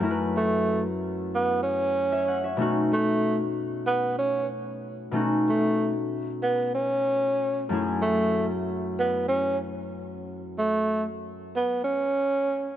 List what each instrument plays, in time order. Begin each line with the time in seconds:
0.00 harp F#2 A3 C#4 E4
0.04 harp A#4
0.11 harp B4
0.37 tenor saxophone A3
1.35 tenor saxophone B3
1.62 tenor saxophone C#4
2.12 harp C#5 E5
2.28 harp F#5
2.44 harp C#5 E5
2.57 harp B2 A3 C#4 D#4
2.61 harp F#4
2.93 tenor saxophone A3
3.87 tenor saxophone B3
4.18 tenor saxophone C#4
5.11 harp B2 A3 C#4 D#4
5.16 harp F#4
5.49 tenor saxophone A3
6.43 tenor saxophone B3
6.75 tenor saxophone C#4
7.69 harp F#2 A3 C#4 E4
7.74 harp G#4
8.02 tenor saxophone A3
8.99 tenor saxophone B3
9.28 tenor saxophone C#4
10.58 tenor saxophone A3
11.56 tenor saxophone B3
11.84 tenor saxophone C#4